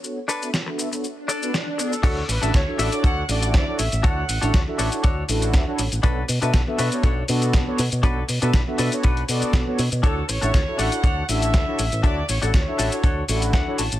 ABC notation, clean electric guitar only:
X:1
M:4/4
L:1/16
Q:"Swing 16ths" 1/4=120
K:D
V:1 name="Clean electric guitar"
z2 [DAB]2 z6 [DAd]2 z4 | [DFAc]2 z [DFAe] z2 [DFAe] z [DFAc]2 z6 | [DFAc]2 z [DFAc] z2 [DFAc] z [DFAc]2 z6 | [DFAB]2 z [DFAB] z2 [DFAB] z [DFAc]2 z6 |
[DFAB]2 z [DFAB] z2 [DFAB] z [DFAB]2 z6 | [DFAc]2 z [DFAc] z2 [DFAc] z [DFAc]2 z6 | [DFAe]2 z [DFAc] z2 [DFAe] z [DFAc]2 c2 f2 a2 |]